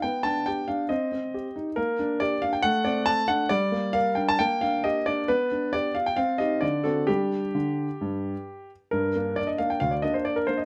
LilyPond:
\new Staff \with { instrumentName = "Grand piano" } { \time 4/4 \key g \minor \tempo 4 = 135 << { g''8 a''8 g''8 f''8 ees''4. r8 | bes'4 d''8 f''16 g''16 fis''8 d''8 a''8 fis''8 | d''4 f''8 g''16 a''16 g''8 f''8 ees''8 d''8 | b'4 d''8 f''16 g''16 f''8 ees''8 d''8 a'8 |
g'2.~ g'8 r8 | bes'4 d''16 ees''16 f''16 g''16 f''16 d''16 ees''16 c''16 d''16 bes'16 c''16 ees''16 | } \\ { b8 d'8 g'8 d'8 c'8 c'8 g'8 ees'8 | bes8 d'8 g'8 d'8 a8 c'8 a'8 d'8 | g8 bes8 bes'8 d'8 bes8 d'8 g'8 d'8 | b8 d'8 g'8 f'8 c'8 <ees' g'>8 d8 <c' fis'>8 |
<g d'>4 d4 g,4 r4 | g,8 <bes d'>4 <bes d'>8 d,8 <bes d'>4 <bes d'>8 | } >> }